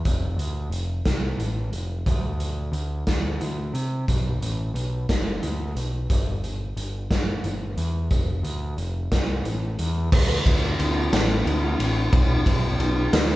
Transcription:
0.05 picked electric bass F1, kick, closed hi-hat
0.37 picked electric bass D2, closed hi-hat
0.70 picked electric bass F1, closed hi-hat
1.05 picked electric bass C2, kick, snare, closed hi-hat
1.37 picked electric bass A1, closed hi-hat
1.72 picked electric bass F1, closed hi-hat
2.06 picked electric bass D2, kick, closed hi-hat
2.40 closed hi-hat
2.72 picked electric bass D2, closed hi-hat
3.07 picked electric bass D2, kick, snare, closed hi-hat
3.41 picked electric bass D2, closed hi-hat
3.74 picked electric bass C3, closed hi-hat
4.08 picked electric bass B1, kick, closed hi-hat
4.41 picked electric bass A1, closed hi-hat
4.74 picked electric bass B1, closed hi-hat
5.09 picked electric bass F#1, kick, snare, closed hi-hat
5.43 picked electric bass D2, closed hi-hat
5.75 picked electric bass B1, closed hi-hat
6.10 picked electric bass G1, kick, closed hi-hat
6.44 closed hi-hat
6.77 picked electric bass G1, closed hi-hat
7.10 picked electric bass G1, kick, snare, closed hi-hat
7.44 picked electric bass G1, closed hi-hat
7.77 picked electric bass E2, closed hi-hat
8.11 picked electric bass F1, kick, closed hi-hat
8.43 picked electric bass D2, closed hi-hat
8.76 picked electric bass F1, closed hi-hat
9.12 picked electric bass C2, kick, snare, closed hi-hat
9.44 picked electric bass A1, closed hi-hat
9.79 picked electric bass E2, closed hi-hat
10.12 picked electric bass D2, kick, crash
10.45 picked electric bass D2, kick, ride
10.79 picked electric bass D2, ride
11.12 picked electric bass A1, snare, ride
11.45 picked electric bass D2, ride
11.79 picked electric bass A1, ride
12.13 picked electric bass B1, kick, ride
12.46 picked electric bass B1, kick, ride
12.79 picked electric bass B1, ride
13.13 picked electric bass D2, snare, ride

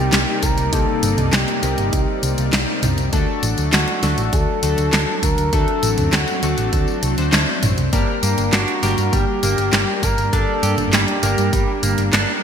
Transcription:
Already playing: supersaw synth C3 G3 A#3 D#4 D5, analog polysynth C4 D#4 G4 A#4, analog synth lead G4
0.13 picked electric bass C2, snare, clap, closed hi-hat, tambourine
0.42 picked electric bass C2, analog synth lead A#4, kick, closed hi-hat, tambourine
0.58 picked electric bass C2, closed hi-hat, tambourine
0.72 picked electric bass C2, analog polysynth A#3 C4 D#4 G4, analog synth lead A4, kick, closed hi-hat, tambourine
1.03 picked electric bass G1, closed hi-hat, tambourine
1.18 picked electric bass C2, closed hi-hat, mid tom, tambourine
1.33 picked electric bass C2, analog synth lead G4, snare, clap, closed hi-hat, tambourine
1.48 closed hi-hat
1.63 picked electric bass C2, analog polysynth C4 D#4 G4 A#4, closed hi-hat, tambourine
1.78 picked electric bass G1, closed hi-hat, tambourine
1.93 picked electric bass C2, kick, closed hi-hat, tambourine
2.23 picked electric bass C2, closed hi-hat, tambourine
2.38 picked electric bass C2, closed hi-hat, tambourine
2.53 picked electric bass C2, snare, clap, closed hi-hat, tambourine
2.83 picked electric bass C2, closed hi-hat, mid tom, tambourine
2.98 picked electric bass C2, closed hi-hat, tambourine
3.13 picked electric bass D2, supersaw synth F#3, analog polysynth A3 D4 F#4 A4, kick, closed hi-hat, tambourine
3.43 picked electric bass A1, closed hi-hat, tambourine
3.58 picked electric bass D2, closed hi-hat, tambourine
3.73 picked electric bass D2, analog synth lead F#4, snare, clap, closed hi-hat, tambourine
3.88 closed hi-hat
4.03 picked electric bass D2, analog polysynth A3 D4 F#4 A4, snare, closed hi-hat, tambourine
4.18 picked electric bass A1, closed hi-hat, tambourine
4.33 picked electric bass D2, analog synth lead A4, kick, closed hi-hat, tambourine
4.63 picked electric bass D2, analog polysynth A3 D4 F#4 A4, closed hi-hat, tambourine
4.78 picked electric bass D2, closed hi-hat, tambourine
4.93 picked electric bass D2, snare, clap, closed hi-hat, tambourine
5.23 picked electric bass D2, analog synth lead A#4, kick, closed hi-hat, tambourine
5.38 picked electric bass D2, closed hi-hat, tambourine
5.53 picked electric bass D2, analog polysynth A3 D4 F#4 A4, supersaw synth C4, analog synth lead A4, kick, closed hi-hat, tambourine
5.68 closed hi-hat
5.83 picked electric bass A1, closed hi-hat, tambourine
5.98 picked electric bass D2, closed hi-hat, mid tom, tambourine
6.13 picked electric bass D2, analog synth lead F#4, snare, clap, closed hi-hat, tambourine
6.28 closed hi-hat, tambourine
6.43 picked electric bass D2, analog polysynth A3 D4 F#4 A4, closed hi-hat, tambourine
6.58 picked electric bass A1, closed hi-hat, tambourine
6.73 picked electric bass D2, kick, closed hi-hat, tambourine
6.88 tambourine
7.03 picked electric bass C2, closed hi-hat, tambourine
7.18 picked electric bass D2, analog polysynth A3 D4 F#4 C5, closed hi-hat, tambourine
7.33 picked electric bass D2, snare, clap, closed hi-hat, tambourine
7.63 picked electric bass A1, closed hi-hat, mid tom, tambourine
7.78 picked electric bass C2, closed hi-hat, tambourine
7.93 picked electric bass G1, clean electric guitar G3, supersaw synth G3 A#3 D4, analog polysynth A#3 D4 G4 A#4, kick, closed hi-hat, tambourine
8.23 picked electric bass G2, clean electric guitar A#3, closed hi-hat, tambourine
8.38 picked electric bass G1, closed hi-hat, tambourine
8.53 picked electric bass G1, clean electric guitar D4, analog synth lead F#4, snare, clap, closed hi-hat, tambourine
8.68 closed hi-hat
8.83 picked electric bass G1, analog polysynth G3 A#3 D4 A#4, clean electric guitar G4, snare, closed hi-hat, tambourine
8.98 picked electric bass G2, closed hi-hat, tambourine
9.13 picked electric bass G1, clean electric guitar G3, analog synth lead G4, kick, closed hi-hat, tambourine
9.43 picked electric bass G1, analog polysynth A#3 D4 G4 A#4, clean electric guitar A#3, closed hi-hat, tambourine
9.58 picked electric bass G1, closed hi-hat, tambourine
9.73 picked electric bass G1, clean electric guitar G3, snare, clap, closed hi-hat, tambourine
10.03 picked electric bass G1, clean electric guitar A#3, analog synth lead A#4, kick, closed hi-hat, tambourine
10.18 picked electric bass G1, closed hi-hat, tambourine
10.33 picked electric bass G1, analog polysynth A#3 D4 G4 D5, clean electric guitar D4, analog synth lead A4, kick, closed hi-hat, tambourine
10.63 picked electric bass G2, clean electric guitar G4, closed hi-hat, tambourine
10.78 picked electric bass G1, closed hi-hat, mid tom, tambourine
10.93 picked electric bass G1, clean electric guitar G3, analog synth lead G4, snare, clap, closed hi-hat, tambourine
11.08 closed hi-hat
11.23 picked electric bass G1, clean electric guitar A#3, analog polysynth A#3 D4 G4 A#4, closed hi-hat, tambourine
11.38 picked electric bass G2, closed hi-hat, tambourine
11.53 picked electric bass G1, clean electric guitar G3, kick, closed hi-hat, tambourine
11.83 picked electric bass G1, clean electric guitar A#3, closed hi-hat, tambourine
11.98 picked electric bass G1, closed hi-hat, tambourine
12.13 picked electric bass G1, clean electric guitar D4, snare, clap, closed hi-hat, tambourine

